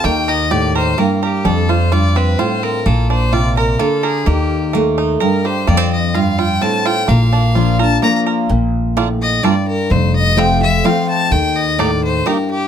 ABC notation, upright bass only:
X:1
M:3/4
L:1/8
Q:1/4=128
K:Bb
V:1 name="Upright bass" clef=bass
E,,6 | F,,6 | B,,,6 | E,,6 |
F,,6 | B,,,6 | B,,,6 | F,,,6 |
E,,6 |]